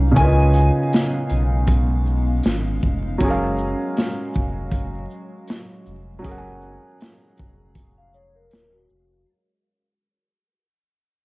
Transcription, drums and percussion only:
0, 0, Header, 1, 2, 480
1, 0, Start_track
1, 0, Key_signature, 6, "major"
1, 0, Tempo, 759494
1, 106, Time_signature, 4, 2, 24, 8
1, 7105, End_track
2, 0, Start_track
2, 0, Title_t, "Drums"
2, 102, Note_on_c, 9, 42, 80
2, 105, Note_on_c, 9, 36, 96
2, 165, Note_off_c, 9, 42, 0
2, 168, Note_off_c, 9, 36, 0
2, 339, Note_on_c, 9, 42, 46
2, 339, Note_on_c, 9, 82, 49
2, 403, Note_off_c, 9, 42, 0
2, 403, Note_off_c, 9, 82, 0
2, 587, Note_on_c, 9, 42, 59
2, 596, Note_on_c, 9, 38, 107
2, 650, Note_off_c, 9, 42, 0
2, 659, Note_off_c, 9, 38, 0
2, 819, Note_on_c, 9, 42, 45
2, 819, Note_on_c, 9, 82, 42
2, 882, Note_off_c, 9, 42, 0
2, 882, Note_off_c, 9, 82, 0
2, 1056, Note_on_c, 9, 42, 89
2, 1059, Note_on_c, 9, 36, 98
2, 1119, Note_off_c, 9, 42, 0
2, 1122, Note_off_c, 9, 36, 0
2, 1303, Note_on_c, 9, 82, 46
2, 1366, Note_off_c, 9, 82, 0
2, 1537, Note_on_c, 9, 42, 64
2, 1553, Note_on_c, 9, 38, 127
2, 1601, Note_off_c, 9, 42, 0
2, 1616, Note_off_c, 9, 38, 0
2, 1782, Note_on_c, 9, 82, 43
2, 1788, Note_on_c, 9, 36, 79
2, 1845, Note_off_c, 9, 82, 0
2, 1852, Note_off_c, 9, 36, 0
2, 2024, Note_on_c, 9, 42, 84
2, 2026, Note_on_c, 9, 36, 97
2, 2087, Note_off_c, 9, 42, 0
2, 2089, Note_off_c, 9, 36, 0
2, 2261, Note_on_c, 9, 82, 51
2, 2324, Note_off_c, 9, 82, 0
2, 2508, Note_on_c, 9, 42, 61
2, 2517, Note_on_c, 9, 38, 105
2, 2571, Note_off_c, 9, 42, 0
2, 2580, Note_off_c, 9, 38, 0
2, 2741, Note_on_c, 9, 82, 47
2, 2753, Note_on_c, 9, 36, 89
2, 2804, Note_off_c, 9, 82, 0
2, 2816, Note_off_c, 9, 36, 0
2, 2979, Note_on_c, 9, 42, 81
2, 2981, Note_on_c, 9, 36, 95
2, 3043, Note_off_c, 9, 42, 0
2, 3044, Note_off_c, 9, 36, 0
2, 3226, Note_on_c, 9, 82, 49
2, 3289, Note_off_c, 9, 82, 0
2, 3460, Note_on_c, 9, 42, 66
2, 3475, Note_on_c, 9, 38, 122
2, 3523, Note_off_c, 9, 42, 0
2, 3538, Note_off_c, 9, 38, 0
2, 3704, Note_on_c, 9, 82, 45
2, 3767, Note_off_c, 9, 82, 0
2, 3945, Note_on_c, 9, 42, 83
2, 3948, Note_on_c, 9, 36, 103
2, 4008, Note_off_c, 9, 42, 0
2, 4011, Note_off_c, 9, 36, 0
2, 4182, Note_on_c, 9, 82, 49
2, 4245, Note_off_c, 9, 82, 0
2, 4428, Note_on_c, 9, 42, 61
2, 4437, Note_on_c, 9, 38, 109
2, 4491, Note_off_c, 9, 42, 0
2, 4500, Note_off_c, 9, 38, 0
2, 4660, Note_on_c, 9, 42, 45
2, 4660, Note_on_c, 9, 82, 45
2, 4673, Note_on_c, 9, 36, 95
2, 4723, Note_off_c, 9, 42, 0
2, 4723, Note_off_c, 9, 82, 0
2, 4736, Note_off_c, 9, 36, 0
2, 4898, Note_on_c, 9, 42, 86
2, 4900, Note_on_c, 9, 36, 95
2, 4962, Note_off_c, 9, 42, 0
2, 4963, Note_off_c, 9, 36, 0
2, 5144, Note_on_c, 9, 82, 49
2, 5208, Note_off_c, 9, 82, 0
2, 5378, Note_on_c, 9, 42, 65
2, 5393, Note_on_c, 9, 38, 122
2, 5441, Note_off_c, 9, 42, 0
2, 5456, Note_off_c, 9, 38, 0
2, 5620, Note_on_c, 9, 82, 43
2, 5683, Note_off_c, 9, 82, 0
2, 7105, End_track
0, 0, End_of_file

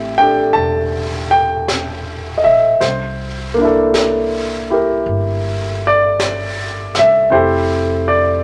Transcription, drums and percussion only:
0, 0, Header, 1, 2, 480
1, 0, Start_track
1, 0, Tempo, 1129944
1, 1192, Time_signature, 4, 2, 24, 8
1, 3584, End_track
2, 0, Start_track
2, 0, Title_t, "Drums"
2, 237, Note_on_c, 9, 25, 34
2, 715, Note_off_c, 9, 25, 0
2, 715, Note_on_c, 9, 25, 37
2, 715, Note_on_c, 9, 38, 36
2, 715, Note_on_c, 9, 44, 44
2, 758, Note_off_c, 9, 38, 0
2, 758, Note_off_c, 9, 44, 0
2, 1194, Note_off_c, 9, 25, 0
2, 1194, Note_on_c, 9, 25, 30
2, 1194, Note_on_c, 9, 38, 26
2, 1237, Note_off_c, 9, 38, 0
2, 1673, Note_off_c, 9, 25, 0
2, 1673, Note_on_c, 9, 25, 33
2, 1673, Note_on_c, 9, 38, 37
2, 1673, Note_on_c, 9, 44, 49
2, 1716, Note_off_c, 9, 38, 0
2, 1716, Note_off_c, 9, 44, 0
2, 2153, Note_off_c, 9, 25, 0
2, 2153, Note_on_c, 9, 25, 28
2, 2632, Note_off_c, 9, 25, 0
2, 2632, Note_on_c, 9, 25, 33
2, 2632, Note_on_c, 9, 38, 39
2, 2632, Note_on_c, 9, 44, 50
2, 2674, Note_off_c, 9, 38, 0
2, 2674, Note_off_c, 9, 44, 0
2, 2951, Note_on_c, 9, 38, 25
2, 2994, Note_off_c, 9, 38, 0
2, 3111, Note_off_c, 9, 25, 0
2, 3111, Note_on_c, 9, 25, 34
2, 3584, Note_off_c, 9, 25, 0
2, 3584, End_track
0, 0, End_of_file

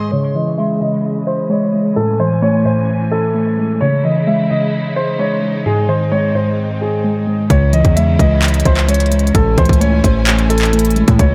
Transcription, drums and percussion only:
0, 0, Header, 1, 2, 480
1, 0, Start_track
1, 0, Key_signature, 4, "minor"
1, 0, Tempo, 461538
1, 121, Time_signature, 4, 2, 24, 8
1, 11802, End_track
2, 0, Start_track
2, 0, Title_t, "Drums"
2, 7801, Note_on_c, 9, 36, 118
2, 7801, Note_on_c, 9, 42, 79
2, 7905, Note_off_c, 9, 36, 0
2, 7905, Note_off_c, 9, 42, 0
2, 8041, Note_on_c, 9, 42, 68
2, 8145, Note_off_c, 9, 42, 0
2, 8160, Note_on_c, 9, 42, 42
2, 8161, Note_on_c, 9, 36, 96
2, 8264, Note_off_c, 9, 42, 0
2, 8265, Note_off_c, 9, 36, 0
2, 8287, Note_on_c, 9, 42, 76
2, 8391, Note_off_c, 9, 42, 0
2, 8521, Note_on_c, 9, 36, 95
2, 8528, Note_on_c, 9, 42, 81
2, 8625, Note_off_c, 9, 36, 0
2, 8632, Note_off_c, 9, 42, 0
2, 8761, Note_on_c, 9, 39, 126
2, 8761, Note_on_c, 9, 42, 61
2, 8821, Note_off_c, 9, 42, 0
2, 8821, Note_on_c, 9, 42, 64
2, 8865, Note_off_c, 9, 39, 0
2, 8881, Note_off_c, 9, 42, 0
2, 8881, Note_on_c, 9, 42, 62
2, 8941, Note_off_c, 9, 42, 0
2, 8941, Note_on_c, 9, 42, 63
2, 9000, Note_off_c, 9, 42, 0
2, 9000, Note_on_c, 9, 42, 75
2, 9001, Note_on_c, 9, 36, 92
2, 9104, Note_off_c, 9, 42, 0
2, 9105, Note_off_c, 9, 36, 0
2, 9122, Note_on_c, 9, 39, 67
2, 9226, Note_off_c, 9, 39, 0
2, 9241, Note_on_c, 9, 42, 75
2, 9301, Note_off_c, 9, 42, 0
2, 9301, Note_on_c, 9, 42, 62
2, 9362, Note_off_c, 9, 42, 0
2, 9362, Note_on_c, 9, 42, 55
2, 9422, Note_off_c, 9, 42, 0
2, 9422, Note_on_c, 9, 42, 44
2, 9481, Note_off_c, 9, 42, 0
2, 9481, Note_on_c, 9, 42, 72
2, 9561, Note_off_c, 9, 42, 0
2, 9561, Note_on_c, 9, 42, 57
2, 9641, Note_off_c, 9, 42, 0
2, 9641, Note_on_c, 9, 42, 45
2, 9721, Note_off_c, 9, 42, 0
2, 9721, Note_on_c, 9, 36, 119
2, 9721, Note_on_c, 9, 42, 80
2, 9825, Note_off_c, 9, 36, 0
2, 9825, Note_off_c, 9, 42, 0
2, 9960, Note_on_c, 9, 36, 94
2, 9961, Note_on_c, 9, 42, 58
2, 10041, Note_off_c, 9, 42, 0
2, 10041, Note_on_c, 9, 42, 62
2, 10064, Note_off_c, 9, 36, 0
2, 10081, Note_on_c, 9, 36, 98
2, 10120, Note_off_c, 9, 42, 0
2, 10120, Note_on_c, 9, 42, 59
2, 10185, Note_off_c, 9, 36, 0
2, 10206, Note_off_c, 9, 42, 0
2, 10206, Note_on_c, 9, 42, 78
2, 10310, Note_off_c, 9, 42, 0
2, 10441, Note_on_c, 9, 36, 93
2, 10446, Note_on_c, 9, 42, 83
2, 10545, Note_off_c, 9, 36, 0
2, 10550, Note_off_c, 9, 42, 0
2, 10680, Note_on_c, 9, 39, 122
2, 10680, Note_on_c, 9, 42, 71
2, 10784, Note_off_c, 9, 39, 0
2, 10784, Note_off_c, 9, 42, 0
2, 10801, Note_on_c, 9, 42, 44
2, 10905, Note_off_c, 9, 42, 0
2, 10921, Note_on_c, 9, 42, 74
2, 11001, Note_off_c, 9, 42, 0
2, 11001, Note_on_c, 9, 42, 59
2, 11041, Note_on_c, 9, 39, 70
2, 11081, Note_off_c, 9, 42, 0
2, 11081, Note_on_c, 9, 42, 46
2, 11145, Note_off_c, 9, 39, 0
2, 11161, Note_off_c, 9, 42, 0
2, 11161, Note_on_c, 9, 42, 74
2, 11221, Note_off_c, 9, 42, 0
2, 11221, Note_on_c, 9, 42, 64
2, 11281, Note_off_c, 9, 42, 0
2, 11281, Note_on_c, 9, 42, 55
2, 11341, Note_off_c, 9, 42, 0
2, 11341, Note_on_c, 9, 42, 44
2, 11401, Note_off_c, 9, 42, 0
2, 11401, Note_on_c, 9, 42, 47
2, 11505, Note_off_c, 9, 42, 0
2, 11521, Note_on_c, 9, 42, 77
2, 11522, Note_on_c, 9, 36, 90
2, 11625, Note_off_c, 9, 42, 0
2, 11626, Note_off_c, 9, 36, 0
2, 11641, Note_on_c, 9, 36, 118
2, 11641, Note_on_c, 9, 42, 78
2, 11745, Note_off_c, 9, 36, 0
2, 11745, Note_off_c, 9, 42, 0
2, 11802, End_track
0, 0, End_of_file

